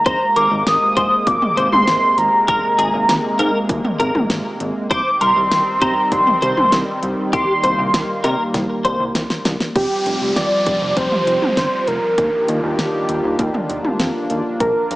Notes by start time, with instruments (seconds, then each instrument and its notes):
Already playing: analog synth pad A#3
0.06 analog synth bass G#1, analog synth pad C3 G#3, clean electric guitar C5, soft synth lead A#5, kick, closed hi-hat
0.36 analog synth bass G#1, clean electric guitar A#4, soft synth lead D6, closed hi-hat
0.51 analog synth bass G#1
0.66 analog synth bass G#1, soft synth lead D#6, snare, closed hi-hat
0.97 analog synth bass G#2, clean electric guitar C5, kick, closed hi-hat
1.27 analog synth bass G#1, soft synth lead D6, kick, closed hi-hat
1.42 mid tom
1.57 analog synth bass G#1, clean electric guitar C5, closed hi-hat
1.72 analog synth bass G#1, soft synth lead C6, mid tom
1.87 analog synth bass G#1, snare, closed hi-hat
2.18 analog synth bass G#1, soft synth lead A#5, closed hi-hat
2.48 analog synth bass G#1, clean electric guitar A#4, kick, closed hi-hat
2.79 analog synth bass G#1, clean electric guitar G#4, closed hi-hat
2.94 analog synth bass G#1
3.09 analog synth bass G#1, snare, closed hi-hat
3.39 analog synth bass G#2, clean electric guitar A#4, closed hi-hat
3.69 analog synth bass G#1, kick, closed hi-hat
3.85 mid tom
4.00 analog synth bass G#1, clean electric guitar A#4, closed hi-hat
4.15 analog synth bass G#1, mid tom
4.30 analog synth bass G#1, snare, closed hi-hat
4.60 analog synth bass G#1, closed hi-hat
4.91 analog synth bass C2, analog synth pad D#3 G3 C4, clean electric guitar C5, soft synth lead D6, kick, closed hi-hat
5.21 analog synth bass C2, clean electric guitar A#4, soft synth lead C6, closed hi-hat
5.36 analog synth bass C2
5.51 analog synth bass C2, snare, closed hi-hat
5.82 analog synth bass C3, clean electric guitar C5, soft synth lead A#5, kick, closed hi-hat
6.12 analog synth bass C2, soft synth lead C6, kick, closed hi-hat
6.27 mid tom
6.42 analog synth bass C2, clean electric guitar C5, closed hi-hat
6.57 analog synth bass C2, mid tom
6.72 analog synth bass C2, snare, closed hi-hat
7.03 analog synth bass C2, closed hi-hat
7.33 analog synth bass C2, analog synth pad A#3, clean electric guitar G4, soft synth lead C6, kick, closed hi-hat
7.63 analog synth bass C2, clean electric guitar C5, closed hi-hat
7.79 analog synth bass C2
7.94 analog synth bass C2, snare, closed hi-hat
8.24 analog synth bass C3, clean electric guitar A#4, closed hi-hat, cowbell
8.54 analog synth bass C2, kick, snare, closed hi-hat
8.85 analog synth bass C2, clean electric guitar C5, closed hi-hat
9.00 analog synth bass C2
9.15 analog synth bass C2, snare, closed hi-hat
9.30 snare
9.45 analog synth bass C2, snare, closed hi-hat
9.60 snare
9.75 analog synth bass F1, analog synth pad F3 G3 C4, soft synth lead G4, kick, closed hi-hat, downlifter
10.06 analog synth bass F1, closed hi-hat
10.21 analog synth bass F1
10.36 analog synth bass F1, soft synth lead D5, snare, closed hi-hat
10.66 analog synth bass F1, kick, closed hi-hat
10.82 analog synth bass F1
10.97 analog synth bass F1, soft synth lead C5, kick, closed hi-hat
11.12 mid tom
11.27 analog synth bass F1, closed hi-hat
11.42 mid tom
11.57 analog synth bass G1, soft synth lead C5, snare, closed hi-hat
11.87 analog synth bass F1, soft synth lead A#4, closed hi-hat
12.18 analog synth bass D#2, analog synth pad D#3 A#3 D4 F4 G4, kick, closed hi-hat
12.48 analog synth bass D#2, closed hi-hat
12.63 analog synth bass D#2
12.79 analog synth bass D#2, snare, closed hi-hat
13.09 analog synth bass D#2, closed hi-hat
13.24 analog synth bass D#2
13.39 analog synth bass D#2, kick, closed hi-hat
13.54 mid tom
13.69 analog synth bass D#2, closed hi-hat
13.85 mid tom
14.00 analog synth bass F2, snare, closed hi-hat
14.30 analog synth bass D#2, closed hi-hat
14.60 analog synth bass A#1, soft synth lead A#4, kick, closed hi-hat
14.91 analog synth bass A#1, closed hi-hat